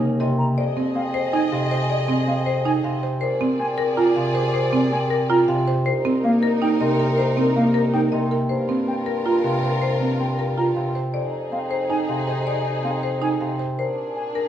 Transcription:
0.00 0.46 D#2 medium
0.00 0.19 C3 medium
0.00 0.59 C#3 medium
0.00 0.59 A#3 medium
0.20 0.59 C3 medium
0.20 0.44 A#4 medium
0.20 0.45 D#5 medium
0.39 0.46 A#5 medium
0.57 3.10 F2 medium
0.57 2.99 G#4 medium
0.57 0.82 D5 medium
0.57 2.99 D#5 medium
0.77 1.01 C4 medium
0.95 2.26 C4 medium
0.95 1.02 F5 medium
1.14 1.39 C5 medium
1.33 1.58 D#4 medium
1.33 1.40 G#5 medium
1.52 2.83 C3 medium
1.52 1.76 F5 medium
1.71 1.95 C5 medium
1.90 2.14 D5 medium
2.08 2.33 C4 medium
2.27 3.23 C4 medium
2.27 2.34 F5 medium
2.46 2.71 C5 medium
2.65 2.90 D#4 medium
2.65 2.72 G#5 medium
2.84 3.23 C3 medium
2.84 3.09 F5 medium
3.03 3.27 C5 medium
3.21 5.74 A#2 medium
3.21 5.63 G#4 medium
3.21 3.46 C5 medium
3.21 5.63 D5 medium
3.41 3.65 C4 medium
3.59 4.90 C4 medium
3.59 3.66 G#5 medium
3.78 4.03 A#4 medium
3.97 4.22 F4 medium
3.97 4.04 A#5 medium
4.16 5.47 C3 medium
4.16 4.40 F5 medium
4.35 4.59 C5 medium
4.54 4.78 C5 medium
4.73 4.97 C4 medium
4.92 8.52 C4 medium
4.92 4.99 G#5 medium
5.10 5.35 A#4 medium
5.30 5.54 F4 medium
5.30 5.37 A#5 medium
5.48 5.87 C3 medium
5.48 5.73 F5 medium
5.68 5.92 C5 medium
5.86 8.38 C2 medium
5.86 8.27 D#4 medium
5.86 8.27 A#4 medium
5.86 6.10 C5 medium
6.05 6.29 C4 medium
6.24 7.55 A#3 medium
6.24 6.31 F5 medium
6.43 6.67 A#4 medium
6.62 6.86 D#4 medium
6.62 6.69 G5 medium
6.80 8.11 C3 medium
6.80 7.05 D#5 medium
6.99 7.24 A#4 medium
7.18 7.42 C5 medium
7.37 7.61 C4 medium
7.56 11.16 A#3 medium
7.56 7.63 F5 medium
7.74 7.99 A#4 medium
7.94 8.18 D#4 medium
7.94 8.01 G5 medium
8.12 8.52 C3 medium
8.12 8.37 D#5 medium
8.31 8.56 A#4 medium
8.49 11.03 G2 medium
8.49 10.92 F4 medium
8.49 10.91 A#4 medium
8.49 8.74 C5 medium
8.69 8.93 C4 medium
8.87 10.18 C4 medium
8.87 8.95 G5 medium
9.06 9.31 A#4 medium
9.26 9.50 F4 medium
9.26 9.33 A#5 medium
9.44 10.75 C3 medium
9.44 9.69 F5 medium
9.63 9.88 C5 medium
9.82 10.06 C5 medium
10.01 10.26 C4 medium
10.20 11.51 C4 medium
10.20 10.27 G5 soft
10.39 10.63 A#4 medium
10.57 10.82 F4 medium
10.57 10.65 A#5 medium
10.76 11.16 C3 medium
10.76 11.01 F5 medium
10.95 11.20 C5 medium
11.14 13.67 F2 medium
11.14 13.56 D#4 medium
11.14 13.56 G#4 medium
11.14 11.39 D5 medium
11.52 12.83 C4 medium
11.52 11.59 F5 medium
11.71 11.95 C5 medium
11.90 12.14 D#4 medium
11.90 11.97 G#5 medium
12.09 13.39 C3 soft
12.09 12.33 F5 medium
12.27 12.52 C5 medium
12.47 12.71 D5 medium
12.84 13.80 C4 medium
12.84 12.91 F5 medium
13.03 13.28 C5 medium
13.22 13.46 D#4 medium
13.22 13.29 G#5 medium
13.40 13.80 C3 soft
13.40 13.65 F5 medium
13.59 13.84 C5 medium
13.78 14.48 A#2 medium
13.78 14.48 D4 medium
13.78 14.48 G#4 medium
13.78 14.03 C5 medium
14.16 14.23 G#5 medium
14.35 14.48 A#4 medium

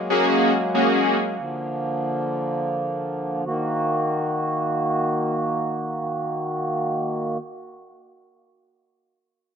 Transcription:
0.00 1.37 F#3 medium
0.00 1.35 G#3 medium
0.00 3.42 A#3 medium
0.10 0.51 A#3 medium
0.10 0.51 C#4 medium
0.10 0.51 F#4 medium
0.10 0.51 G#4 loud
0.74 1.15 A#3 medium
0.74 1.15 C#4 medium
0.74 1.15 F#4 medium
0.74 1.15 G#4 medium
1.39 3.44 D3 medium
1.39 3.44 F3 medium
3.46 7.37 D#3 medium
3.46 7.37 A#3 medium
3.46 7.37 F#4 medium

